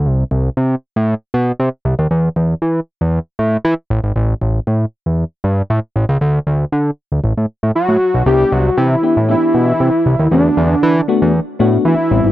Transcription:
<<
  \new Staff \with { instrumentName = "Analog synth lead" } { \time 4/4 \key c \lydian \tempo 4 = 117 r1 | r1 | r1 | r2. fis'4 |
g'8 fis'8 e'4 e'2 | d'2 r4 e'4 | }
  \new Staff \with { instrumentName = "FM electric piano" } { \time 4/4 \key c \lydian r1 | r1 | r1 | r1 |
<b d' e' g'>8 r4 <b d' e' g'>16 r16 <b d' dis' e' g'>4 r4 | <a b d' fis'>8 r4 <a b d' fis'>8 r8 <a b d' fis'>8 r8 <g b c' e'>8 | }
  \new Staff \with { instrumentName = "Analog synth bass" } { \clef bass \time 4/4 \key c \lydian c,8 c,8 c8 r16 a,8 r16 b,8 c16 r16 c,16 ees,16 | e,8 e,8 e8 r16 e,8 r16 a,8 e16 r16 a,,16 gis,,16 | a,,8 a,,8 a,8 r16 e,8 r16 g,8 a,16 r16 a,,16 cis,16 | d,8 d,8 d8 r16 d,16 a,,16 a,16 r16 a,16 r16 a,16 r16 b,,16 |
c,8 c,8 c8 r16 a,8 r16 b,8 c16 r16 c,16 dis,16 | e,8 e,8 e8 r16 e,8 r16 a,8 e16 r16 a,,16 gis,,16 | }
>>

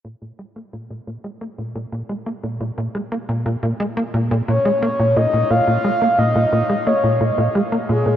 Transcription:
<<
  \new Staff \with { instrumentName = "Soft synth lead" } { \time 4/4 \key bes \minor \tempo 4 = 88 r1 | r2 r8 des''4 ees''8 | f''4 ees''4 des''4 r8 aes'8 | }
  \new Staff \with { instrumentName = "Analog synth bass" } { \clef bass \time 4/4 \key bes \minor bes,16 bes,16 aes16 bes16 bes,16 bes,16 bes,16 aes16 bes16 bes,16 bes,16 bes,16 aes16 bes16 bes,16 bes,16 | bes,16 aes16 bes16 bes,16 bes,16 bes,16 aes16 bes16 bes,16 bes,16 bes,16 aes16 bes16 bes,16 bes,16 bes,16 | bes,16 bes,16 aes16 bes16 bes,16 bes,16 bes,16 aes16 bes16 bes,16 bes,16 bes,16 aes16 bes16 bes,16 bes,16 | }
>>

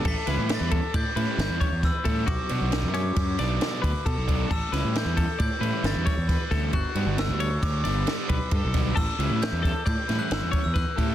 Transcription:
<<
  \new Staff \with { instrumentName = "Glockenspiel" } { \time 5/4 \key a \mixolydian \tempo 4 = 134 b'''4 a'''4 g'''4 g'''4 e'''4 | d'''4. d'''2 r4. | e'''4 g'''4 g'''4 a'''2 | fis'''4 e'''4 d'''2~ d'''8 r8 |
e'''4 g'''4 g'''8. fis'''16 e'''8. e'''16 fis'''4 | }
  \new Staff \with { instrumentName = "Clean electric guitar" } { \time 5/4 \key a \mixolydian a'8 b'4 a'8 d''8 b'4 cis''8 b'8 a'8 | fis'4 r8 cis'4 d''4 b'8 a'4 | a'8 b'4 a'8 d''8 b'4 cis''8 b'8 a'8 | fis'4 r8 cis''4 d''4 b'8 a'4 |
a'8 b'4 a'8 d''8 b'4 cis''8 b'8 a'8 | }
  \new Staff \with { instrumentName = "Overdriven electric guitar" } { \time 5/4 \key a \mixolydian r8 <e g cis' e'>8 <e g cis' e'>8 r4 <e g cis' e'>8 <e g cis' e'>8 r4 <e g cis' e'>8 | r8 <b, fis b d'>8 <b, fis b d'>8 r4 <b, fis b d'>8 <b, fis b d'>8 r4 <b, fis b d'>8 | r8 <e g cis' e'>8 <e g cis' e'>8 r4 <e g cis' e'>8 <e g cis' e'>8 r4 <e g cis' e'>8 | r8 <d g b d'>8 <d g b d'>8 r4 <d g b d'>8 <d g b d'>8 r4 <d g b d'>8 |
r8 <e g cis' e'>8 <e g cis' e'>8 r4 <e g cis' e'>8 <e g cis' e'>8 r4 <e g cis' e'>8 | }
  \new Staff \with { instrumentName = "Fingered electric bass" } { \clef bass \time 5/4 \key a \mixolydian a,,16 r16 cis,16 a,8 e,8 r16 a,16 r16 a,16 r16 g,,16 e,16 r16 e,8 r16 a,8 | b,,16 r16 b,16 b,,8 fis,8. fis,8 b,,8 r8 d,16 r16 b,16 b,,8. | a,,16 r16 cis,16 a,8 e,8 r16 a,16 r16 a,16 r16 g,,16 e,16 r16 e,8 r16 d,8 | g,,16 r16 g,16 g,,8 d,8. d,8 g,,8 r8 b,,16 r16 g,16 b,,8. |
a,,16 r16 cis,16 a,8 e,8 r16 a,16 r16 a,16 r16 g,,16 e,16 r16 e,8 r16 a,8 | }
  \new DrumStaff \with { instrumentName = "Drums" } \drummode { \time 5/4 <cymc bd>8 <cymr sn>8 <cymr sn>8 <bd cymr>8 <bd cymr>8 cymr8 <cymr sn>8 <bd cymr>8 <bd cymr sn>8 <bd cymr>8 | <bd cymr>8 cymr8 <cymr sn>8 cymr8 <bd cymr sn>8 <cymr sn>8 <cymr sn>8 <bd cymr>8 <bd cymr>8 <bd cymr>8 | <cymc bd>8 <cymr sn>8 <cymr sn>8 <bd cymr>8 <bd cymr>8 cymr8 <cymr sn>8 <bd cymr sn>8 <bd cymr sn>8 <bd cymr sn>8 | <bd cymr>8 cymr8 <cymr sn>8 cymr8 <bd cymr sn>8 <cymr sn>8 <cymr sn>8 <bd cymr>8 <bd cymr>8 <bd cymr sn>8 |
<cymc bd>8 cymr8 <cymr sn>8 <bd cymr sn>8 <bd cymr>8 <cymr sn>8 <cymr sn>8 <bd cymr>8 <bd cymr sn>8 <bd cymr>8 | }
>>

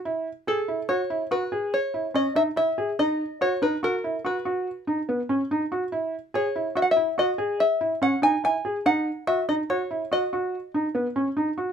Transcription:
<<
  \new Staff \with { instrumentName = "Five-string banjo" } { \time 7/4 \key b \major \tempo 4 = 143 r4 a'4 cis''4 b'4 cis''4 dis''8 e''8 e''4 | dis''4 cis''8 b'8 ais'4 b'4. r2 r8 | r4 cis''4 \tuplet 3/2 { e''16 fis''16 e''4 } dis''4 e''4 fis''8 gis''8 gis''4 | fis''4 e''8 dis''8 cis''4 dis''4. r2 r8 | }
  \new Staff \with { instrumentName = "Felt piano" } { \time 7/4 \key b \major e'4 gis'8 e'8 fis'8 e'8 fis'8 gis'4 e'8 cis'8 dis'8 e'8 gis'8 | dis'4 fis'8 dis'8 fis'8 e'8 fis'8 fis'4 dis'8 b8 cis'8 dis'8 fis'8 | e'4 gis'8 e'8 fis'8 e'8 fis'8 gis'4 e'8 cis'8 dis'8 e'8 gis'8 | dis'4 fis'8 dis'8 fis'8 e'8 fis'8 fis'4 dis'8 b8 cis'8 dis'8 fis'8 | }
>>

